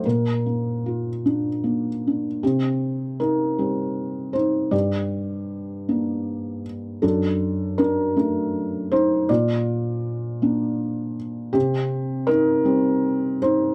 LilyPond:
<<
  \new Staff \with { instrumentName = "Felt piano" } { \time 6/8 \key c \dorian \tempo 4. = 53 bes'4. r4. | <c' g'>4 <ees' bes'>4. <ees' c''>8 | <g' d''>2~ <g' d''>8 r8 | <d' a'>4 <d' bes'>4. <ees' c''>8 |
<f' d''>2~ <f' d''>8 r8 | <c' g'>4 <ees' bes'>4. <ees' c''>8 | }
  \new Staff \with { instrumentName = "Felt piano" } { \time 6/8 \key c \dorian bes,8 bes8 f'8 d'8 bes8 d'8 | c4. <g c'>4. | g,4. <bes d'>4. | fis,4. <a d'>4. |
bes,4. <bes d'>4. | c4. <g c'>4. | }
>>